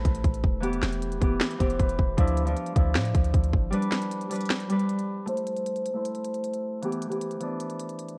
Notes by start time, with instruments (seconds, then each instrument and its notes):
Already playing: harp A3 D4 E4 B4
0.05 808-style bass A1, kick, closed hi-hat
0.15 closed hi-hat
0.24 808-style bass A1, kick, closed hi-hat
0.34 closed hi-hat
0.44 808-style bass E1, kick
0.60 harp E3 B3 G4, closed hi-hat
0.73 closed hi-hat
0.83 808-style bass E1, finger snap, snare, closed hi-hat
0.92 closed hi-hat
1.02 closed hi-hat
1.12 closed hi-hat
1.20 808-style bass E1, harp E3 B3 G4, kick, closed hi-hat
1.41 finger snap, snare, closed hi-hat
1.50 closed hi-hat
1.58 808-style bass E1, harp E3 B3 G4 C5, kick, closed hi-hat
1.70 closed hi-hat
1.79 808-style bass E1, harp B4, kick, closed hi-hat
1.89 closed hi-hat
1.99 808-style bass E1, kick
2.17 808-style bass D2, harp F3 D4 E4, kick, closed hi-hat
2.28 closed hi-hat
2.37 closed hi-hat
2.45 harp F3 D4 F4, closed hi-hat
2.57 closed hi-hat
2.66 closed hi-hat
2.75 808-style bass D2, harp F3 D4 E4, kick, closed hi-hat
2.95 808-style bass A2, finger snap, snare, closed hi-hat
3.05 closed hi-hat
3.15 808-style bass D2, kick, closed hi-hat
3.25 closed hi-hat
3.34 808-style bass D2, kick, closed hi-hat
3.44 closed hi-hat
3.54 808-style bass G1, kick
3.71 harp G3 D4 B4, closed hi-hat
3.83 closed hi-hat
3.92 finger snap, snare, closed hi-hat
4.02 closed hi-hat
4.12 closed hi-hat
4.21 closed hi-hat
4.30 harp G3 D4 B4, closed hi-hat, open hi-hat
4.36 closed hi-hat
4.41 closed hi-hat
4.45 closed hi-hat
4.50 finger snap, snare, closed hi-hat
4.60 closed hi-hat
4.69 harp G3 D4 B4, closed hi-hat
4.79 closed hi-hat
4.89 closed hi-hat
4.99 closed hi-hat
5.26 harp A3 E4 C5, closed hi-hat
5.37 closed hi-hat
5.47 closed hi-hat
5.57 closed hi-hat
5.66 closed hi-hat
5.76 closed hi-hat
5.86 closed hi-hat
5.94 harp A3 E4 C5
6.05 closed hi-hat
6.15 closed hi-hat
6.25 closed hi-hat
6.34 closed hi-hat
6.44 closed hi-hat
6.54 closed hi-hat
6.82 harp E3 B3 G4, closed hi-hat
6.92 closed hi-hat
7.02 closed hi-hat
7.09 harp E3 B3 G4, closed hi-hat
7.21 closed hi-hat
7.31 closed hi-hat
7.40 harp E3 B3 D4, closed hi-hat
7.60 closed hi-hat
7.70 closed hi-hat
7.79 closed hi-hat
7.89 closed hi-hat
7.99 closed hi-hat
8.08 closed hi-hat